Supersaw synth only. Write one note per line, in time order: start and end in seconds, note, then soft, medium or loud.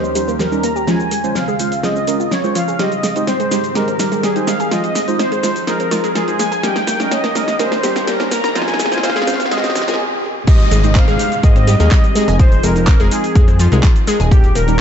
0.00 0.41 C5 loud
0.39 0.64 A#4 loud
0.63 0.88 A#5 loud
0.87 1.37 G#5 loud
1.35 1.85 F5 loud
1.83 2.28 D#5 loud
2.31 2.56 C#5 loud
2.55 2.80 F5 loud
2.79 3.24 D#5 loud
3.27 3.72 C5 loud
3.75 4.25 A#4 medium
4.24 4.48 G#4 medium
4.47 4.72 F5 medium
4.71 5.16 D#5 loud
5.19 5.64 C5 loud
5.68 6.17 A#4 loud
6.15 6.40 G#4 medium
6.39 6.64 G#5 loud
6.63 7.13 G5 loud
7.12 7.61 D#5 medium
7.59 8.09 C5 medium
8.08 8.32 A#4 medium
8.32 8.56 A#5 loud
8.55 9.05 G#5 loud
9.03 9.53 F5 loud
9.51 10.01 D#5 medium
10.47 10.97 D#5 loud
10.95 11.45 F5 loud
11.43 12.42 D#5 loud
12.40 12.62 C5 loud
12.64 13.13 A#4 loud
13.11 13.56 G#4 medium
14.31 14.54 G4 loud
14.55 14.81 A#4 loud